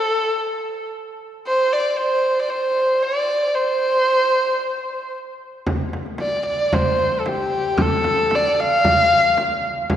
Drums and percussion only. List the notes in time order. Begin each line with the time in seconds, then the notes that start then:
5.66 frame drum
5.93 frame drum
6.06 frame drum
6.18 frame drum
6.46 frame drum
6.73 frame drum
7.12 frame drum
7.26 frame drum
7.78 frame drum
8.04 frame drum
8.18 frame drum
8.31 frame drum
8.84 frame drum
9.24 frame drum
9.37 frame drum
9.90 frame drum